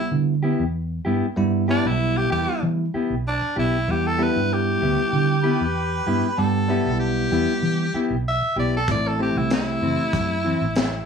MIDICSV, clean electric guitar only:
0, 0, Header, 1, 2, 480
1, 0, Start_track
1, 0, Key_signature, 1, "minor"
1, 0, Tempo, 625652
1, 1053, Time_signature, 4, 2, 24, 8
1, 8482, End_track
2, 0, Start_track
2, 0, Title_t, "Clean electric guitar"
2, 0, Program_c, 0, 27
2, 327, Note_on_c, 0, 67, 66
2, 335, Note_on_c, 0, 64, 73
2, 339, Note_on_c, 0, 59, 64
2, 481, Note_off_c, 0, 67, 0
2, 485, Note_off_c, 0, 64, 0
2, 487, Note_off_c, 0, 59, 0
2, 804, Note_on_c, 0, 67, 76
2, 812, Note_on_c, 0, 64, 73
2, 817, Note_on_c, 0, 59, 66
2, 960, Note_off_c, 0, 67, 0
2, 964, Note_off_c, 0, 64, 0
2, 966, Note_off_c, 0, 59, 0
2, 1289, Note_on_c, 0, 67, 60
2, 1296, Note_on_c, 0, 64, 59
2, 1298, Note_on_c, 0, 59, 56
2, 1442, Note_off_c, 0, 67, 0
2, 1446, Note_off_c, 0, 64, 0
2, 1447, Note_off_c, 0, 59, 0
2, 1766, Note_on_c, 0, 67, 66
2, 1773, Note_on_c, 0, 64, 59
2, 1779, Note_on_c, 0, 59, 50
2, 1921, Note_off_c, 0, 67, 0
2, 1924, Note_off_c, 0, 64, 0
2, 1927, Note_off_c, 0, 59, 0
2, 2257, Note_on_c, 0, 67, 69
2, 2261, Note_on_c, 0, 64, 65
2, 2268, Note_on_c, 0, 59, 58
2, 2406, Note_off_c, 0, 67, 0
2, 2409, Note_off_c, 0, 64, 0
2, 2412, Note_off_c, 0, 59, 0
2, 2732, Note_on_c, 0, 67, 65
2, 2736, Note_on_c, 0, 64, 65
2, 2742, Note_on_c, 0, 59, 57
2, 2884, Note_off_c, 0, 67, 0
2, 2886, Note_off_c, 0, 64, 0
2, 2889, Note_off_c, 0, 59, 0
2, 3210, Note_on_c, 0, 67, 62
2, 3216, Note_on_c, 0, 64, 61
2, 3218, Note_on_c, 0, 59, 53
2, 3363, Note_off_c, 0, 67, 0
2, 3366, Note_off_c, 0, 64, 0
2, 3367, Note_off_c, 0, 59, 0
2, 3696, Note_on_c, 0, 67, 60
2, 3703, Note_on_c, 0, 64, 52
2, 3707, Note_on_c, 0, 59, 49
2, 3846, Note_off_c, 0, 67, 0
2, 3850, Note_off_c, 0, 64, 0
2, 3852, Note_off_c, 0, 59, 0
2, 4171, Note_on_c, 0, 67, 85
2, 4178, Note_on_c, 0, 64, 70
2, 4184, Note_on_c, 0, 59, 72
2, 4324, Note_off_c, 0, 67, 0
2, 4327, Note_off_c, 0, 64, 0
2, 4330, Note_off_c, 0, 59, 0
2, 4653, Note_on_c, 0, 67, 80
2, 4658, Note_on_c, 0, 64, 75
2, 4666, Note_on_c, 0, 59, 64
2, 4805, Note_off_c, 0, 67, 0
2, 4808, Note_off_c, 0, 64, 0
2, 4811, Note_off_c, 0, 59, 0
2, 5140, Note_on_c, 0, 67, 66
2, 5146, Note_on_c, 0, 64, 66
2, 5148, Note_on_c, 0, 59, 59
2, 5289, Note_off_c, 0, 67, 0
2, 5292, Note_off_c, 0, 64, 0
2, 5293, Note_off_c, 0, 59, 0
2, 5613, Note_on_c, 0, 67, 68
2, 5621, Note_on_c, 0, 64, 67
2, 5624, Note_on_c, 0, 59, 62
2, 5765, Note_off_c, 0, 67, 0
2, 5769, Note_off_c, 0, 64, 0
2, 5771, Note_off_c, 0, 59, 0
2, 6094, Note_on_c, 0, 67, 78
2, 6100, Note_on_c, 0, 64, 70
2, 6107, Note_on_c, 0, 59, 60
2, 6246, Note_off_c, 0, 67, 0
2, 6249, Note_off_c, 0, 64, 0
2, 6252, Note_off_c, 0, 59, 0
2, 6571, Note_on_c, 0, 67, 69
2, 6574, Note_on_c, 0, 64, 56
2, 6579, Note_on_c, 0, 59, 56
2, 6724, Note_off_c, 0, 67, 0
2, 6726, Note_off_c, 0, 64, 0
2, 6728, Note_off_c, 0, 59, 0
2, 7049, Note_on_c, 0, 64, 57
2, 7056, Note_on_c, 0, 60, 53
2, 7062, Note_on_c, 0, 52, 48
2, 7203, Note_off_c, 0, 64, 0
2, 7207, Note_off_c, 0, 60, 0
2, 7210, Note_off_c, 0, 52, 0
2, 7538, Note_on_c, 0, 64, 63
2, 7540, Note_on_c, 0, 60, 55
2, 7549, Note_on_c, 0, 52, 56
2, 7688, Note_off_c, 0, 64, 0
2, 7689, Note_off_c, 0, 60, 0
2, 7693, Note_off_c, 0, 52, 0
2, 8013, Note_on_c, 0, 64, 79
2, 8019, Note_on_c, 0, 60, 57
2, 8023, Note_on_c, 0, 52, 70
2, 8165, Note_off_c, 0, 64, 0
2, 8168, Note_off_c, 0, 60, 0
2, 8170, Note_off_c, 0, 52, 0
2, 8482, End_track
0, 0, End_of_file